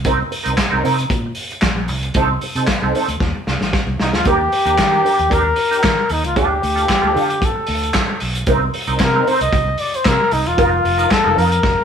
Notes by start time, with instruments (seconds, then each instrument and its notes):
Already playing: fingered electric bass C2
0.05 clean electric guitar C4 D#4 A#4, kick, closed hi-hat
0.20 muted clean electric guitar stroke
0.31 muted clean electric guitar stroke, open hi-hat
0.44 fingered electric bass C2, clean electric guitar C4 D#4 A#4, closed hi-hat
0.56 muted clean electric guitar stroke, kick, snare, clap, closed hi-hat
0.70 fingered electric bass C2, clean electric guitar C4 D#4 A#4
0.84 fingered electric bass C3, clean electric guitar C4 D#4 A#4, open hi-hat
0.98 muted clean electric guitar stroke, closed hi-hat
1.10 fingered electric bass A#2, muted clean electric guitar stroke, kick, closed hi-hat
1.26 muted clean electric guitar stroke
1.35 open hi-hat
1.51 muted clean electric guitar stroke, closed hi-hat
1.62 fingered electric bass A#1, muted clean electric guitar stroke, kick, snare, clap, closed hi-hat
1.79 muted clean electric guitar stroke
1.88 fingered electric bass C2, open hi-hat
2.03 muted clean electric guitar stroke, closed hi-hat
2.14 fingered electric bass C2, clean electric guitar C4 D#4 A4, kick, closed hi-hat
2.31 muted clean electric guitar stroke
2.41 muted clean electric guitar stroke, open hi-hat
2.55 fingered electric bass C3, clean electric guitar C4 D#4 A4, closed hi-hat
2.67 muted clean electric guitar stroke, kick, snare, clap, closed hi-hat
2.83 fingered electric bass C2, clean electric guitar C4 D#4 A4
2.95 clean electric guitar C4 D#4 A4, open hi-hat
3.08 fingered electric bass D2, muted clean electric guitar stroke, closed hi-hat
3.20 fingered electric bass D#2, muted clean electric guitar stroke, kick, snare
3.35 muted clean electric guitar stroke
3.47 fingered electric bass C2, snare
3.61 fingered electric bass A1, muted clean electric guitar stroke, snare
3.73 muted clean electric guitar stroke, kick, snare
3.87 fingered electric bass C2, muted clean electric guitar stroke
4.00 fingered electric bass C2, flugelhorn D#4, snare
4.13 fingered electric bass D2, flugelhorn F4, muted clean electric guitar stroke, snare
4.25 fingered electric bass D#2, clean electric guitar D4 G4 A#4, flugelhorn G4, kick, closed hi-hat
4.40 muted clean electric guitar stroke
4.52 muted clean electric guitar stroke, open hi-hat
4.65 fingered electric bass D#2, clean electric guitar D4 G4 A#4, closed hi-hat
4.78 fingered electric bass D#3, muted clean electric guitar stroke, kick, snare, clap, closed hi-hat
4.91 clean electric guitar D4 G4 A#4
5.05 clean electric guitar D4 G4 A#4, open hi-hat
5.19 fingered electric bass D#2, muted clean electric guitar stroke, closed hi-hat
5.30 fingered electric bass D#2, clean electric guitar D4 G4 A#4, flugelhorn A#4, kick, closed hi-hat
5.44 muted clean electric guitar stroke
5.56 muted clean electric guitar stroke, open hi-hat
5.71 clean electric guitar D4 G4 A#4, closed hi-hat
5.83 fingered electric bass D#3, kick, snare, clap, closed hi-hat
5.96 muted clean electric guitar stroke
6.09 fingered electric bass D#2, flugelhorn D#4, open hi-hat
6.23 fingered electric bass C#2, flugelhorn F4, muted clean electric guitar stroke, closed hi-hat
6.36 fingered electric bass D2, clean electric guitar D4 F4 A4, flugelhorn G4, kick, closed hi-hat
6.50 muted clean electric guitar stroke
6.62 fingered electric bass D2, muted clean electric guitar stroke, open hi-hat
6.75 clean electric guitar D4 F4 A4, closed hi-hat
6.87 muted clean electric guitar stroke, kick, snare, clap, closed hi-hat
7.01 fingered electric bass D2, clean electric guitar D4 F4 A4
7.14 fingered electric bass D3, clean electric guitar D4 F4 A4, open hi-hat
7.28 muted clean electric guitar stroke, closed hi-hat
7.41 muted clean electric guitar stroke, kick, closed hi-hat
7.45 flugelhorn A4
7.56 muted clean electric guitar stroke
7.67 fingered electric bass D2, open hi-hat
7.82 muted clean electric guitar stroke, closed hi-hat
7.93 muted clean electric guitar stroke, kick, snare, clap, closed hi-hat
8.09 muted clean electric guitar stroke
8.20 fingered electric bass B1, open hi-hat
8.34 muted clean electric guitar stroke, closed hi-hat
8.47 fingered electric bass C2, clean electric guitar C4 D#4 A#4, kick, closed hi-hat
8.62 muted clean electric guitar stroke
8.74 muted clean electric guitar stroke, open hi-hat
8.87 fingered electric bass C2, clean electric guitar C4 D#4 A#4, closed hi-hat
8.99 fingered electric bass C3, flugelhorn A#4, muted clean electric guitar stroke, kick, snare, clap, closed hi-hat
9.15 clean electric guitar C4 D#4 A#4
9.27 clean electric guitar C4 D#4 A#4, flugelhorn C5, open hi-hat
9.41 fingered electric bass C2, flugelhorn D#5, muted clean electric guitar stroke, closed hi-hat
9.52 fingered electric bass C2, muted clean electric guitar stroke, kick, closed hi-hat
9.68 muted clean electric guitar stroke
9.78 flugelhorn D5, open hi-hat
9.93 flugelhorn C5, muted clean electric guitar stroke, closed hi-hat
10.05 fingered electric bass C3, flugelhorn A#4, muted clean electric guitar stroke, kick, snare, clap, closed hi-hat
10.31 fingered electric bass C2, flugelhorn D#4, open hi-hat
10.45 fingered electric bass E1, flugelhorn F4, muted clean electric guitar stroke, closed hi-hat
10.57 fingered electric bass F1, clean electric guitar D#4 F4 A#4, kick, closed hi-hat
10.72 muted clean electric guitar stroke
10.84 fingered electric bass F1, muted clean electric guitar stroke, open hi-hat
10.98 clean electric guitar D#4 F4 A#4, closed hi-hat
11.10 flugelhorn A4, muted clean electric guitar stroke, kick, snare, clap, closed hi-hat
11.24 fingered electric bass F1, clean electric guitar D#4 F4 A#4
11.36 fingered electric bass F2, clean electric guitar D#4 F4 A#4, flugelhorn A#4, open hi-hat
11.51 muted clean electric guitar stroke, closed hi-hat
11.63 fingered electric bass F1, muted clean electric guitar stroke, kick, snare
11.77 muted clean electric guitar stroke